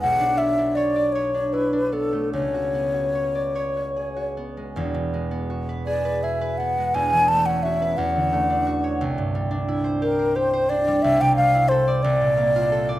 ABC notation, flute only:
X:1
M:6/8
L:1/16
Q:3/8=57
K:Emix
V:1 name="Flute"
f2 e2 d2 c2 B2 A2 | c8- c2 z2 | z6 d2 e2 f2 | g2 a f e2 f6 |
z6 ^A2 =c2 d2 | e =g ^e2 =c2 d6 |]